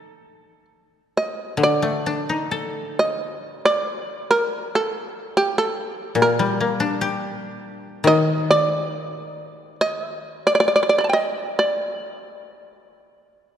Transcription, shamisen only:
0.00 0.65 D5 medium
1.17 1.59 D#5 medium
1.63 2.51 D5 medium
2.51 2.94 A#4 medium
2.99 3.60 D#5 medium
3.65 4.26 D5 medium
4.31 4.70 A#4 medium
4.75 5.33 A4 medium
5.37 5.56 G4 medium
5.58 6.16 A4 medium
6.22 7.41 A#4 medium
8.07 8.47 D#5 loud
8.51 9.75 D5 loud
9.81 10.42 D#5 medium
10.47 10.53 D5 medium
10.55 10.59 D5 medium
10.60 10.67 D5 medium
10.68 10.74 D5 medium
10.76 10.82 D5 medium
10.83 10.88 D5 medium
10.89 10.96 D5 medium
10.98 11.04 D5 medium
10.98 11.04 A#5 soft
11.04 11.09 A5 soft
11.09 11.54 D#5 medium
11.09 11.22 G5 soft
11.59 13.57 D5 medium

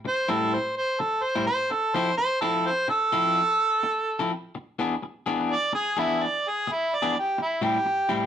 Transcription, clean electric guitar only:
0.05 muted clean electric guitar stroke soft
0.28 0.57 A2 medium
0.28 0.57 G3 medium
0.28 0.56 C4 medium
0.28 0.56 E4 medium
1.00 muted clean electric guitar stroke medium
1.35 1.48 A2 medium
1.35 1.48 G3 medium
1.35 1.47 C4 medium
1.35 1.47 E4 medium
1.71 muted clean electric guitar stroke soft
1.95 2.10 F3 medium
1.95 2.10 C4 medium
1.95 2.10 E4 medium
1.95 2.10 A4 loud
2.18 muted clean electric guitar stroke soft
2.42 2.70 F3 medium
2.42 2.70 C4 medium
2.42 2.69 E4 medium
2.42 2.69 A4 medium
2.88 muted clean electric guitar stroke soft
3.12 3.41 F3 medium
3.12 3.40 C4 medium
3.12 3.40 E4 medium
3.12 3.40 A4 loud
3.83 muted clean electric guitar stroke soft
4.19 4.32 F3 medium
4.19 4.31 C4 medium
4.19 4.31 E4 medium
4.19 4.31 A4 medium
4.55 muted clean electric guitar stroke soft
4.79 4.94 E3 medium
4.79 4.94 B3 medium
4.79 4.94 D4 medium
4.79 4.95 G#4 medium
5.03 muted clean electric guitar stroke soft
5.26 5.54 E3 medium
5.26 5.54 B3 medium
5.26 5.54 D4 medium
5.26 5.53 G#4 medium
5.73 muted clean electric guitar stroke soft
5.97 6.25 E3 medium
5.97 6.25 B3 medium
5.97 6.24 D4 medium
5.97 6.24 G#4 medium
6.67 muted clean electric guitar stroke medium
7.02 7.15 E3 medium
7.02 7.15 B3 medium
7.02 7.14 D4 medium
7.02 7.14 G#4 medium
7.38 muted clean electric guitar stroke soft
7.62 7.77 A2 medium
7.62 7.77 G3 medium
7.62 7.77 C4 medium
7.62 7.78 E4 medium
7.85 muted clean electric guitar stroke soft
8.09 8.26 A2 medium
8.09 8.26 G3 medium
8.09 8.26 C4 medium
8.09 8.26 E4 medium

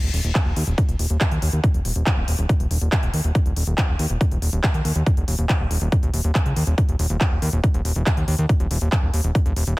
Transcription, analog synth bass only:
0.03 0.10 D#1 medium
0.14 0.21 D#1 loud
0.24 0.32 D#1 medium
0.46 0.53 D#1 medium
0.56 0.64 D#2 loud
0.67 0.74 D#1 medium
0.89 0.96 D#1 medium
0.99 1.07 D#1 loud
1.10 1.17 D#1 medium
1.32 1.39 D#2 medium
1.42 1.49 D#2 loud
1.53 1.60 D#2 medium
1.74 1.82 D#1 medium
1.85 1.92 D#1 loud
1.96 2.03 D#1 medium
2.17 2.24 D#1 medium
2.28 2.35 D#1 loud
2.39 2.46 D#1 medium
2.60 2.67 D#1 medium
2.71 2.78 D#1 medium
2.82 2.89 D#1 medium
3.03 3.10 D#1 medium
3.14 3.21 D#2 loud
3.24 3.32 D#1 medium
3.46 3.53 D#1 medium
3.57 3.64 D#1 loud
3.67 3.74 D#1 medium
3.89 3.96 D#1 medium
3.99 4.07 D#2 loud
4.10 4.17 D#1 medium
4.31 4.39 D#1 medium
4.42 4.49 D#1 loud
4.53 4.60 D#1 medium
4.74 4.82 D#2 medium
4.85 4.92 D#2 loud
4.96 5.03 D#2 medium
5.17 5.24 D#1 medium
5.28 5.35 D#1 loud
5.39 5.46 D#1 medium
5.60 5.67 D#1 medium
5.71 5.78 D#1 loud
5.82 5.89 D#1 loud
6.03 6.10 D#1 medium
6.14 6.21 D#1 loud
6.24 6.32 D#1 medium
6.46 6.53 C#2 medium
6.56 6.64 D#2 medium
6.67 6.74 D#1 medium
6.89 6.96 D#1 medium
6.99 7.07 D#1 loud
7.10 7.17 D#1 medium
7.31 7.39 D#1 medium
7.42 7.49 D#2 loud
7.53 7.60 D#1 medium
7.74 7.82 D#1 medium
7.85 7.92 D#1 loud
7.96 8.03 D#1 medium
8.17 8.24 D#2 medium
8.28 8.35 D#2 loud
8.39 8.46 D#2 medium
8.60 8.67 D#1 medium
8.71 8.78 D#1 loud
8.81 8.89 D#1 medium
9.03 9.10 D#1 medium
9.14 9.21 D#1 loud
9.24 9.32 D#1 loud
9.46 9.53 D#1 medium
9.56 9.64 D#1 loud
9.67 9.74 D#1 medium

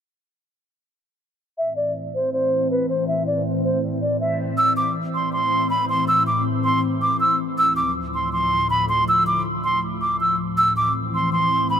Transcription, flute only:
1.58 1.73 E5 loud
1.76 1.92 D5 medium
2.15 2.30 C5 medium
2.33 2.68 C5 medium
2.71 2.86 B4 medium
2.89 3.05 C5 medium
3.08 3.23 E5 loud
3.27 3.42 D5 medium
3.64 3.79 C5 medium
4.02 4.17 D5 medium
4.20 4.36 E5 medium
4.58 4.73 E6 loud
4.77 4.92 D6 medium
5.15 5.30 C6 medium
5.33 5.68 C6 medium
5.70 5.86 B5 medium
5.89 6.05 C6 medium
6.08 6.23 E6 loud
6.27 6.42 D6 medium
6.64 6.80 C6 medium
7.02 7.17 D6 medium
7.20 7.36 E6 medium
7.58 7.73 E6 loud
7.76 7.92 D6 medium
8.14 8.30 C6 medium
8.33 8.68 C6 medium
8.70 8.86 B5 medium
8.89 9.04 C6 medium
9.08 9.24 E6 loud
9.27 9.42 D6 medium
9.64 9.80 C6 medium
10.02 10.17 D6 medium
10.21 10.36 E6 medium
10.58 10.73 E6 loud
10.77 10.92 D6 medium
11.15 11.30 C6 medium
11.33 11.68 C6 medium
11.70 11.80 B5 medium

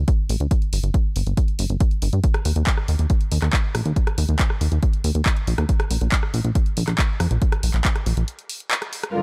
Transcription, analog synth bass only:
0.30 0.36 A1 medium
0.40 0.47 D2 medium
0.73 0.79 G1 medium
0.83 0.90 G1 medium
1.16 1.23 G1 medium
1.27 1.33 G1 medium
1.59 1.66 G1 medium
1.70 1.77 G1 medium
2.02 2.09 G1 medium
2.13 2.20 G2 medium
2.45 2.52 D#2 medium
2.56 2.63 D#2 medium
2.89 2.95 D#2 medium
2.99 3.06 D#2 medium
3.32 3.38 D#2 medium
3.42 3.49 D#2 medium
3.75 3.82 A#1 medium
3.86 3.92 D#2 medium
4.18 4.25 D#2 medium
4.29 4.36 D#2 medium
4.61 4.68 D#2 medium
4.72 4.79 D#2 medium
5.04 5.11 D#2 medium
5.15 5.22 D#2 medium
5.47 5.54 A#1 medium
5.58 5.65 D#2 medium
5.91 5.97 A#1 medium
6.01 6.08 A#1 medium
6.34 6.40 A#1 medium
6.45 6.51 A#1 medium
6.77 6.84 A#1 loud
6.88 6.94 A#1 medium
7.20 7.27 F2 medium
7.31 7.38 A#1 medium
7.63 7.70 A#1 medium
7.74 7.81 A#1 medium
8.07 8.13 A#1 loud
8.17 8.24 A#1 medium

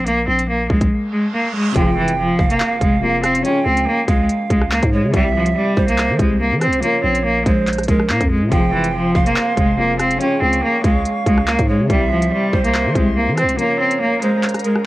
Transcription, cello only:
0.06 0.23 A#3 loud
0.28 0.44 C4 medium
0.49 0.65 A#3 medium
0.70 0.86 G#3 medium
1.12 1.28 G#3 medium
1.33 1.50 A#3 medium
1.54 1.71 G#3 medium
1.76 1.92 F3 medium
1.97 2.13 E3 medium
2.18 2.48 F3 medium
2.50 2.79 A#3 medium
2.81 2.97 G#3 medium
3.03 3.19 A#3 loud
3.24 3.40 C4 medium
3.44 3.61 C#4 medium
3.66 3.82 C4 medium
3.87 4.03 A#3 medium
4.08 4.24 G#3 medium
4.50 4.66 G#3 medium
4.71 4.87 A#3 medium
4.92 5.09 G#3 medium
5.14 5.30 G3 medium
5.35 5.51 F3 medium
5.56 5.86 G3 medium
5.88 6.17 A#3 medium
6.19 6.35 G#3 medium
6.41 6.57 A#3 medium
6.62 6.78 C4 medium
6.82 6.99 A#3 loud
7.04 7.20 C4 medium
7.25 7.41 A#3 medium
7.46 7.62 G#3 medium
7.88 8.05 G#3 medium
8.09 8.26 A#3 medium
8.30 8.47 G#3 medium
8.52 8.68 F3 medium
8.73 8.89 E3 medium
8.94 9.24 F3 medium
9.26 9.55 A#3 medium
9.57 9.73 G#3 medium
9.79 9.95 A#3 medium
10.00 10.16 C4 medium
10.20 10.37 C#4 medium
10.42 10.58 C4 medium
10.63 10.79 A#3 medium
10.84 11.00 G#3 medium
11.26 11.42 G#3 medium
11.47 11.64 A#3 medium
11.69 11.85 G#3 medium
11.90 12.06 G3 medium
12.11 12.27 F3 medium
12.32 12.62 G3 medium
12.64 12.94 A#3 medium
12.95 13.12 G#3 medium
13.17 13.33 A#3 medium
13.38 13.54 C4 medium
13.58 13.75 A#3 loud
13.80 13.96 C4 medium
14.01 14.17 A#3 medium
14.22 14.38 G#3 medium
14.64 14.81 G#3 medium

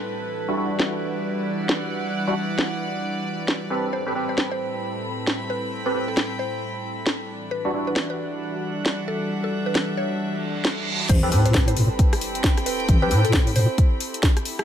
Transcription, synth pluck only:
3.93 4.15 C5 loud
4.29 4.42 C5 medium
4.51 4.73 C5 loud
5.50 5.72 B4 loud
5.86 5.99 B4 medium
6.08 6.30 A4 medium
6.39 7.44 C5 loud
7.51 7.73 B4 loud
7.87 8.00 B4 medium
8.10 8.32 B4 medium
9.08 9.30 A4 loud
9.44 9.57 A4 medium
9.66 9.88 B4 medium
9.97 11.02 C#5 loud
11.09 11.31 C5 loud
11.45 11.58 C5 medium
11.68 11.90 C5 loud
12.66 12.88 B4 loud
13.02 13.15 B4 medium
13.25 13.46 A4 medium
13.56 14.61 C5 loud

